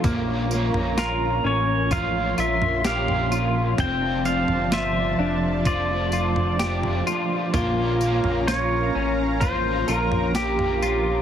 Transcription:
0.03 A#1 A#2 F3 A#3 C#4 F4 A#4 C#5 A#5, kick, floor tom, tambourine
0.51 A#3 C#4 F4, tambourine
0.74 A#1, floor tom
0.97 F4 A#4, snare, tambourine
1.44 A1 C#4 C#5
1.90 F3 A#3 F4 F5 C6, kick, floor tom, tambourine
1.94 C#4 F4
2.38 A#1 F4 E5, tambourine
2.62 floor tom
2.84 F3 A#3 C#4 F4 G4 F5, snare, tambourine
3.08 floor tom
3.32 F4, tambourine
3.77 F1 F2 C3 F3 A3 C4 C5 D5 G5 A5, kick, floor tom, tambourine
3.82 D4 F4
4.25 F5, tambourine
4.48 G1, floor tom
4.72 F4 E5, snare, tambourine
5.19 F1 D4
5.65 F1 F3 A3 D4 F4 D5, kick, floor tom, tambourine
6.12 F4, tambourine
6.36 floor tom
6.59 F3 A3 D4 F4 G4, snare, tambourine
6.83 floor tom
7.07 F4, tambourine
7.53 A#1 A#2 F3 A#3 C#4 F4 A#4 F5 A#5, kick, floor tom, tambourine
8.00 A#3 C#4 F4, tambourine
8.24 A#1, floor tom
8.48 F4 C#5, snare, tambourine
8.95 A1 C#4
9.41 F3 A#3 C#4 F4 C5, kick, floor tom, tambourine
9.88 A#1 F4 A#4, tambourine
10.12 floor tom
10.35 F3 A#3 C#4 F4 G4, snare, tambourine
10.59 floor tom
10.82 F4, tambourine

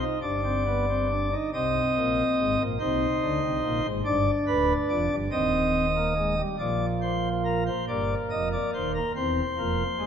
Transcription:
0.00 D#4
0.22 G1 G2 D4 D5
0.44 C4
0.66 B3
0.89 C4
1.10 D4
1.32 D#4
1.53 C2 C3 C4 D#5
1.96 A#1 A#2
2.38 G#1 G#2
2.59 A#1 A#2
2.79 C2 C3 D#4 C5
3.21 D2 D3
3.42 C2 C3
3.63 A#1 A#2
3.84 G#1 G#2
4.05 G1 G2 D4 D5
4.47 D1 D2 B4
4.89 F1 F2 D5
5.10 G1 G2
5.31 D#1 D#2 C4 D#5
5.95 A#3
6.16 G#3
6.37 G3
6.59 A#1 A#2 F3 D5
7.02 C5
7.45 A#4
7.67 C5
7.88 G1 G2 A#3 D5
8.30 F1 F2 D#5
8.52 D5
8.74 D#1 D#2 C5
8.94 A#4
9.16 E1 E2 C4 C5
9.57 F1 F2 A#3
9.99 G1 G2 G#3

